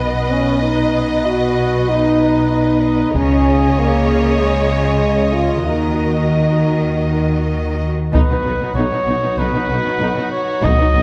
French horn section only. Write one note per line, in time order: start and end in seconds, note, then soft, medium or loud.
0.00 0.33 B3 medium
0.31 0.63 C#4 medium
0.62 1.24 D#4 medium
1.24 1.87 F#4 medium
1.89 2.49 D#4 medium
2.50 3.12 D#4 medium
3.15 3.76 C#4 medium
3.78 4.40 A#3 medium
4.40 5.33 G#3 medium
5.34 5.64 F4 medium
5.65 7.52 D#4 medium
8.14 11.03 F#3 medium
8.14 11.03 D#4 medium